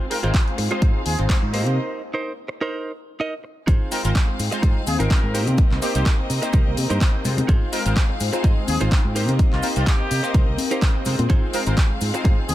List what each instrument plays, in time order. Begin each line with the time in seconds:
Already playing: string section C4 G#4 F5
0.10 analog polysynth G#3 C4 D#4 F4 C5, trumpet section A#4, open hi-hat
0.23 fingered electric bass G#1, analog polysynth G#3 C4 D#4 F4 C5, clean electric guitar F4 G#4 C5, trumpet section A#4, closed hi-hat
0.34 kick, clap, closed hi-hat
0.47 closed hi-hat
0.58 fingered electric bass G#2, muted clean electric guitar stroke, open hi-hat
0.71 analog polysynth G#3 C4 D#4 F4 C5, clean electric guitar F4 G#4 C5, closed hi-hat
0.82 fingered electric bass G#2, kick, closed hi-hat
1.06 fingered electric bass D#2, trumpet section G#4, open hi-hat
1.18 fingered electric bass G#1, analog polysynth G#3 C4 D#4 F4 C5, closed hi-hat
1.29 analog polysynth G#3 C4 D#4 C5, clean electric guitar F4 G#4 C5, kick, clap, closed hi-hat
1.43 fingered electric bass G#2
1.53 analog polysynth A#3 C4 D#4 G4 C5, string section C4 A#4 D#5, clean electric guitar D#4 A#4 C5, open hi-hat
1.66 fingered electric bass C3, closed hi-hat
2.14 clean electric guitar D#4 A#4 C5
2.48 muted clean electric guitar stroke
2.61 clean electric guitar D#4 A#4 C5
3.20 clean electric guitar D#4 A#4 D#5
3.44 muted clean electric guitar stroke
3.67 fingered electric bass G#1, string section C4 G#4 F5, clean electric guitar D#4 F4 G#4 C5, kick, closed hi-hat, maracas
3.91 analog polysynth G#3 C4 D#4 F4 C5, trumpet section A#4, open hi-hat, maracas
4.04 fingered electric bass G#1, analog polysynth G#3 C4 D#4 F4 C5, trumpet section A#4, closed hi-hat, maracas
4.15 kick, clap, closed hi-hat, maracas
4.28 muted clean electric guitar stroke
4.39 fingered electric bass G#2, open hi-hat, maracas
4.52 analog polysynth G#3 C4 D#4 F4 C5, muted clean electric guitar stroke, closed hi-hat, maracas
4.62 fingered electric bass G#2, clean electric guitar D#4 F4 G#4 C5, kick, closed hi-hat, low conga, maracas
4.87 fingered electric bass D#2, trumpet section G#4, open hi-hat, high conga, maracas
4.99 fingered electric bass G#1, analog polysynth G#3 C4 D#4 F4 C5, clean electric guitar D#4 F4 G#4 A#4, trumpet section A#4, closed hi-hat, maracas
5.10 analog polysynth G#3 C4 D#4 F4 C5, kick, clap, closed hi-hat, maracas
5.23 fingered electric bass G#2
5.34 analog polysynth A#3 C4 D#4 G4 C5, clean electric guitar D#4 G4 A#4 C5, string section A#4 D#5, open hi-hat, maracas
5.47 fingered electric bass C3, closed hi-hat, high conga, maracas
5.58 muted fingered electric bass stroke, kick, closed hi-hat, maracas
5.71 fingered electric bass C2, clap
5.82 analog polysynth A#3 C4 D#4 G4 C5, trumpet section G4, open hi-hat, maracas
5.95 fingered electric bass C2, analog polysynth A#3 C4 D#4 G4 C5, trumpet section G4, closed hi-hat, maracas
6.06 kick, clap, closed hi-hat, maracas
6.19 muted clean electric guitar stroke
6.30 fingered electric bass C3, open hi-hat, maracas
6.42 analog polysynth A#3 C4 D#4 G4 C5, muted clean electric guitar stroke, closed hi-hat, maracas
6.53 fingered electric bass C2, clean electric guitar D#4 G4 A#4 C5, kick, closed hi-hat, maracas
6.67 fingered electric bass C2
6.77 fingered electric bass C3, open hi-hat, high conga, maracas
6.90 fingered electric bass G2, analog polysynth A#3 C4 D#4 G4 C5, clean electric guitar D#4 G4 A#4 C5, closed hi-hat, maracas
7.01 analog polysynth A#3 C4 D#4 G4, kick, clap, closed hi-hat, maracas
7.25 fingered electric bass C3, analog polysynth G#3 C4 D#4 F4 C5, open hi-hat, low conga, maracas
7.37 muted clean electric guitar stroke, closed hi-hat, high conga, low conga, maracas
7.48 fingered electric bass G#1, string section C4 G#4 F5, clean electric guitar D#4 F4 G#4 C5, kick, closed hi-hat, maracas
7.72 analog polysynth G#3 C4 D#4 F4 C5, trumpet section A#4, open hi-hat, maracas
7.85 fingered electric bass G#1, analog polysynth G#3 C4 D#4 F4 C5, trumpet section A#4, closed hi-hat, maracas
7.96 kick, clap, closed hi-hat, maracas
8.09 muted clean electric guitar stroke
8.20 fingered electric bass G#2, open hi-hat, maracas
8.33 analog polysynth G#3 C4 D#4 F4 C5, muted clean electric guitar stroke, closed hi-hat, maracas
8.44 fingered electric bass G#2, clean electric guitar D#4 F4 G#4 D#5, kick, closed hi-hat, low conga, maracas
8.67 fingered electric bass D#2, trumpet section G#4, open hi-hat, high conga, maracas
8.80 fingered electric bass G#1, analog polysynth G#3 C4 D#4 F4 C5, clean electric guitar D#4 F4 G#4 C5, closed hi-hat, maracas
8.91 analog polysynth G#3 C4 D#4 F4 C5, kick, clap, closed hi-hat, maracas
9.05 fingered electric bass G#2
9.15 analog polysynth A#3 C4 D#4 G4 C5, clean electric guitar D#4 G4 A#4 C5, string section A#4 D#5, open hi-hat, maracas
9.28 fingered electric bass C3, closed hi-hat, high conga, maracas
9.39 muted fingered electric bass stroke, kick, closed hi-hat, maracas
9.53 fingered electric bass C2, trumpet section F4, clap
9.62 analog polysynth A#3 C4 D#4 G4 C5, open hi-hat, maracas
9.76 fingered electric bass C2, analog polysynth A#3 C4 D#4 G4 C5, trumpet section F4, closed hi-hat, maracas
9.87 trumpet section G4, kick, clap, closed hi-hat, maracas
10.00 muted clean electric guitar stroke
10.11 fingered electric bass C3, open hi-hat, maracas
10.23 analog polysynth A#3 C4 D#4 G4 C5, muted clean electric guitar stroke, closed hi-hat, maracas
10.34 fingered electric bass C2, clean electric guitar D#4 G4 A#4 C5, kick, closed hi-hat, maracas
10.48 fingered electric bass C2
10.58 open hi-hat, high conga, maracas
10.71 analog polysynth A#3 C4 D#4 G4 C5, clean electric guitar D#4 G4 A#4 C5, closed hi-hat, maracas
10.82 analog polysynth A#3 C4 D#4 G4 C5, kick, clap, closed hi-hat, maracas
11.05 fingered electric bass C3, analog polysynth G#3 C4 D#4 F4 C5, open hi-hat, low conga, maracas
11.19 fingered electric bass A#2, muted clean electric guitar stroke, closed hi-hat, high conga, low conga, maracas
11.30 fingered electric bass G#1, clean electric guitar D#4 F4 G#4 C5, string section G#4 F5, kick, closed hi-hat, maracas
11.53 analog polysynth G#3 C4 D#4 F4 C5, trumpet section A#4, open hi-hat, maracas
11.66 fingered electric bass G#1, analog polysynth G#3 C4 D#4 F4 C5, trumpet section A#4, closed hi-hat, maracas
11.77 kick, clap, closed hi-hat, maracas
11.90 muted clean electric guitar stroke
12.01 fingered electric bass G#2, open hi-hat, maracas
12.14 analog polysynth G#3 C4 D#4 F4 C5, muted clean electric guitar stroke, closed hi-hat, maracas
12.24 fingered electric bass G#2, clean electric guitar D#4 F4 G#4 C5, kick, closed hi-hat, low conga, maracas
12.49 fingered electric bass D#2, trumpet section G#4, open hi-hat, high conga, maracas